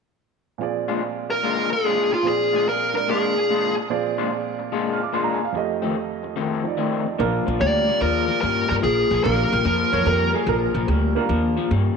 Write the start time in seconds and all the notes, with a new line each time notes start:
0.58 A#2 F3 C4 G#4, muted clean electric guitar stroke
0.63 D5
0.88 A#2 G#3 D4 F4
1.02 muted clean electric guitar stroke
1.30 A#4, muted clean electric guitar stroke
1.43 A#2 G#3 D4 F4
1.71 G#4, muted clean electric guitar stroke
1.85 A#2 G#3 D4 F4
2.12 F4, muted clean electric guitar stroke
2.23 A#2 F3 C4 G#4, muted clean electric guitar stroke
2.27 G#4 D5
2.53 A#2 G#3 D4 F4
2.67 A#4, muted clean electric guitar stroke
2.92 G#3 D4 A#4 D5, muted clean electric guitar stroke
2.97 A#4
3.08 A#2 G#3 D4 F4 G#4
3.36 muted clean electric guitar stroke
3.50 A#2 G#3 D4 F4
3.78 muted clean electric guitar stroke
3.90 A#2 F3 C4 G#4 D5, muted clean electric guitar stroke
4.18 A#2 G#3 D4 F4
4.31 muted clean electric guitar stroke
4.59 muted clean electric guitar stroke
4.72 A#2 G#3 D4 F4
4.93 F6
5.01 D6, muted clean electric guitar stroke
5.13 A#2 G#3 D4 F4 C6
5.24 A#5
5.34 G#5
5.41 F5, muted clean electric guitar stroke
5.52 F2 F3 A3 G4, muted clean electric guitar stroke
5.57 D#5
5.82 F2 D#3 A3 C4
5.95 muted clean electric guitar stroke
6.23 muted clean electric guitar stroke
6.36 F2 D#3 A3 C4
6.64 F3 D#4 D5, muted clean electric guitar stroke
6.77 F2 D#3 A3 C4
7.06 muted clean electric guitar stroke
7.19 A#1 A#2 F3 A#3 D4 F4 A#4
7.46 A#1 A#2 F3
7.59 D2 A#2 G3 D5
7.87 A#2 G3
8.01 D#2 A#2 F3 A#4
8.28 A#2 F3
8.41 G2 A#2 G3 A#4
8.69 G2 A#2 G3 A#4
8.82 A#1 A#2 F3 G#4
9.11 A#1 A#2 F3
9.23 A#1 A#2 G3 A#3 D4 F4 A#4
9.52 A#1 A#2 G3
9.65 F2 A#2 F3
9.93 F2 A#2 F3 C#5
10.06 F2 A#2 G3 A#4
10.34 A#2 G3 G#4
10.46 A#1 A#2 F3 A#4
10.74 A#1 A#2 F3
10.88 D2 A#2 G3
11.15 A#2 G3 A#3 D4 F4 A#4
11.29 D#2 A#2 F3
11.57 A#2 F3
11.71 G2 A#2 G3